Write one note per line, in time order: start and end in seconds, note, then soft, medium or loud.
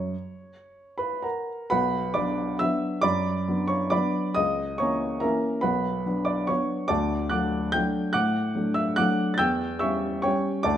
0.00 0.13 F#2 medium
0.00 1.47 C#5 medium
0.98 1.22 B4 medium
0.98 1.23 B5 medium
1.23 1.67 A#4 medium
1.23 1.68 F#5 medium
1.23 1.70 A#5 medium
1.70 2.15 B1 medium
1.70 2.12 B4 medium
1.70 2.12 F#5 medium
1.70 2.13 B5 loud
2.14 2.57 F#3 soft
2.14 2.57 B3 soft
2.14 2.57 D4 soft
2.14 2.57 D5 medium
2.14 2.57 B5 medium
2.14 2.59 D6 medium
2.59 3.00 F#3 soft
2.59 3.00 B3 soft
2.59 3.01 D4 medium
2.59 3.01 E5 medium
2.59 3.03 E6 loud
3.01 3.46 F#2 medium
3.01 3.65 D5 medium
3.01 3.65 B5 medium
3.01 3.68 D6 loud
3.48 3.88 F#3 soft
3.48 3.89 B3 soft
3.48 3.89 D4 soft
3.68 3.90 C#5 medium
3.68 3.91 C#6 medium
3.90 4.33 F#3 soft
3.90 4.33 B3 soft
3.90 4.33 D4 medium
3.90 4.33 D5 medium
3.90 4.33 B5 medium
3.90 4.36 D6 medium
4.35 4.79 C#2 medium
4.35 4.77 D#5 medium
4.35 4.79 D#6 loud
4.78 5.20 E3 soft
4.78 5.20 A#3 soft
4.78 5.20 C#4 medium
4.78 5.20 C#5 medium
4.78 5.19 A#5 medium
4.78 5.23 C#6 medium
5.20 5.60 E3 medium
5.20 5.60 A#3 medium
5.20 5.61 C#4 medium
5.20 5.61 A#4 medium
5.20 5.61 E5 medium
5.20 5.63 A#5 medium
5.61 6.05 B1 medium
5.61 6.02 B4 medium
5.61 6.02 F#5 medium
5.61 6.05 B5 medium
6.06 6.45 F#3 soft
6.06 6.46 B3 soft
6.06 6.46 D4 soft
6.25 6.47 D5 medium
6.25 6.48 D6 medium
6.47 6.87 F#3 soft
6.47 6.87 B3 medium
6.47 6.88 D4 medium
6.47 6.88 C#5 medium
6.47 6.90 C#6 medium
6.88 7.31 D2 medium
6.88 7.28 D5 medium
6.88 7.28 A5 medium
6.88 7.29 D6 loud
7.30 7.71 F#3 soft
7.30 7.71 A3 soft
7.30 7.71 D4 medium
7.30 7.71 F#5 medium
7.30 7.71 D6 medium
7.30 7.74 F#6 medium
7.72 8.11 F#3 medium
7.72 8.11 A3 medium
7.72 8.12 D4 medium
7.72 8.12 G5 medium
7.72 8.14 G6 loud
8.13 8.55 A2 medium
8.13 8.73 F#5 medium
8.13 8.73 D6 medium
8.13 8.77 F#6 loud
8.55 8.95 F#3 soft
8.55 8.95 A3 soft
8.55 8.96 D4 soft
8.74 8.97 E5 medium
8.74 8.98 E6 medium
8.96 9.37 F#3 medium
8.96 9.37 A3 medium
8.96 9.37 D4 medium
8.96 9.31 F#5 medium
8.96 9.31 D6 medium
8.96 9.33 F#6 loud
9.34 9.81 G6 loud
9.34 9.41 A6 medium
9.39 9.81 E2 medium
9.39 9.78 G5 medium
9.39 9.78 E6 medium
9.79 10.21 G3 medium
9.79 10.21 C#4 medium
9.79 10.21 E5 medium
9.79 10.21 C#6 medium
9.79 10.23 E6 medium
10.22 10.62 G3 medium
10.22 10.63 C#4 medium
10.22 10.63 C#5 medium
10.22 10.63 G5 medium
10.22 10.65 C#6 loud
10.63 10.77 D2 medium
10.63 10.77 D5 medium
10.63 10.77 A5 medium
10.63 10.77 D6 loud